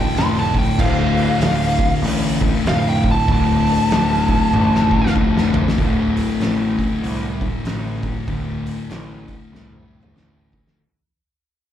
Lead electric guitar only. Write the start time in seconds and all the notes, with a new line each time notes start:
Already playing: G5
0.18 C6
0.39 A5
0.59 G5
0.80 F5
2.68 F5
2.89 G5
3.11 A5
3.32 A5